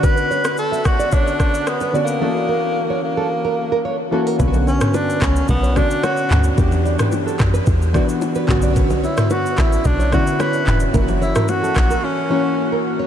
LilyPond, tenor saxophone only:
\new Staff \with { instrumentName = "Tenor saxophone" } { \time 4/4 \key b \minor \tempo 4 = 110 b'4 a'8 fis'8 d'4 \tuplet 3/2 { b8. r16 ais8~ } | ais4. ais2 r8 | r8 cis'8 d'8 cis'8 b8 d'8 fis'8. r16 | r1 |
r8 e'8 fis'8 e'8 d'8 fis'8 b'8. r16 | r8 e'8 fis'4 cis'4. r8 | }